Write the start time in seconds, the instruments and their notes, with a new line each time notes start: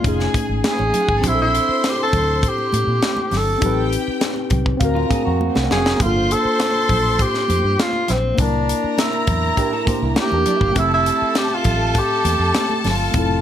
Already playing: tenor saxophone F4
0.01 tine electric piano A3 C#4, string section G#4 G#5, kick, closed hi-hat
0.05 fingered electric bass F1, tine electric piano D#4 G#4
0.20 snare, muted conga
0.34 muted fingered electric bass stroke, kick, closed hi-hat, high conga
0.49 fingered electric bass G#1
0.64 tenor saxophone G#4, snare, closed hi-hat, muted conga, high conga
0.72 string section B3 B4
0.79 fingered electric bass A1, string section C#4 C#5, high conga
0.87 string section D#4 D#5
0.94 string section F4 F5, closed hi-hat, low conga
1.02 string section F#4 F#5
1.09 fingered electric bass G#1, string section G#4 G#5, kick
1.17 tine electric piano C4, string section A4 A5
1.23 fingered electric bass A#1, tine electric piano D4 E4, string section C5 C6, kick, closed hi-hat, muted conga, low conga
1.28 tenor saxophone E4, tine electric piano G4
1.35 tine electric piano A4
1.39 tenor saxophone E4, muted conga
1.55 closed hi-hat
1.69 muted fingered electric bass stroke
1.84 snare, closed hi-hat, high conga
1.89 tenor saxophone G4
2.03 tenor saxophone A4
2.13 fingered electric bass D2, kick, closed hi-hat, low conga
2.43 kick, closed hi-hat
2.48 tenor saxophone G4
2.58 muted conga
2.72 fingered electric bass A2, closed hi-hat, high conga
2.87 fingered electric bass A#2
3.02 snare, closed hi-hat, high conga
3.17 muted conga, high conga
3.31 fingered electric bass G1, snare, open hi-hat, low conga
3.37 tenor saxophone A4
3.58 tine electric piano C4 D#4, low conga
3.62 fingered electric bass A1, tine electric piano G4 B4, string section G4 G5, kick, closed hi-hat
3.93 closed hi-hat
4.08 muted fingered electric bass stroke
4.21 snare, closed hi-hat, muted conga, high conga
4.36 muted conga
4.50 fingered electric bass C2, kick, closed hi-hat, low conga
4.66 kick
4.77 fingered electric bass D2, tine electric piano C4 F5, kick, closed hi-hat
4.82 tine electric piano F#4 A#4, string section A#4 A#5, muted conga
4.95 clean electric guitar C4 F4, muted conga
5.10 clean electric guitar D4 G#4, muted fingered electric bass stroke, kick, closed hi-hat, high conga
5.25 fingered electric bass F2, clean electric guitar C4 F#4
5.41 high conga
5.49 string section C4 C5
5.55 fingered electric bass C2, string section D4 D5, snare, muted conga, high conga
5.64 string section D#4 D#5
5.71 fingered electric bass F1, string section F4 F5, tenor saxophone G#4, snare, low conga
5.78 string section F#4 F#5
5.86 string section G#4 G#5, snare
5.93 tine electric piano A#3, string section A#4 A#5
5.99 fingered electric bass G1, tine electric piano D4 F4, tenor saxophone F4, string section C5 C6, kick, closed hi-hat, muted conga, low conga
6.04 tine electric piano A4
6.31 tenor saxophone A4, closed hi-hat
6.45 muted fingered electric bass stroke
6.60 snare, closed hi-hat, muted conga, high conga
6.76 muted conga
6.89 fingered electric bass A#1, kick, open hi-hat, low conga
7.19 tenor saxophone G4, kick, closed hi-hat, muted conga
7.34 snare, muted conga
7.48 fingered electric bass F2, closed hi-hat, high conga
7.64 fingered electric bass G2
7.79 tenor saxophone F4, snare, closed hi-hat, high conga
7.93 high conga
8.08 fingered electric bass A#1, tenor saxophone C4, snare, closed hi-hat, low conga
8.35 fingered electric bass C2, tine electric piano A#3 D4, kick, closed hi-hat, muted conga, low conga
8.40 tenor saxophone D4, tine electric piano E4 A#4, string section A#4 A#5
8.69 closed hi-hat
8.84 muted fingered electric bass stroke
8.98 tenor saxophone E4, snare, closed hi-hat, muted conga, high conga
9.13 muted conga
9.27 fingered electric bass E2, kick, closed hi-hat, low conga
9.57 clean electric guitar D4 G4, kick, closed hi-hat
9.73 clean electric guitar E4 A4, muted conga
9.85 tine electric piano A#3 D4 E4 A#4, clean electric guitar G4 C5, muted fingered electric bass stroke, kick, closed hi-hat, high conga
10.02 fingered electric bass C2, clean electric guitar E4 A#4
10.16 clean electric guitar E4 A4, tenor saxophone G4, snare, closed hi-hat, muted conga, high conga
10.32 fingered electric bass E2, clean electric guitar D4 G4, high conga
10.46 string section D4 D5, closed hi-hat, low conga
10.55 string section E4 E5
10.61 fingered electric bass G1, string section F4 F5, kick
10.69 tine electric piano A3, string section G4 G5
10.74 fingered electric bass F1, tine electric piano C4 E5, string section A4 A5, kick, closed hi-hat, low conga
10.79 tenor saxophone E4, tine electric piano G4
10.92 tenor saxophone E4, muted conga
11.06 closed hi-hat
11.22 muted fingered electric bass stroke
11.35 tenor saxophone G4, snare, closed hi-hat, high conga
11.50 muted conga
11.54 tenor saxophone F4
11.64 fingered electric bass A1, kick, closed hi-hat, low conga
11.95 tenor saxophone G4, kick, closed hi-hat, muted conga
12.25 fingered electric bass E2, closed hi-hat, high conga
12.40 fingered electric bass F2
12.54 snare, closed hi-hat, high conga
12.70 high conga
12.80 tenor saxophone G4
12.84 fingered electric bass G1, snare, open hi-hat, low conga
12.89 tenor saxophone F4
13.11 fingered electric bass F1, tine electric piano A3 C4, kick, closed hi-hat, low conga
13.16 tine electric piano E4 A4
13.29 muted conga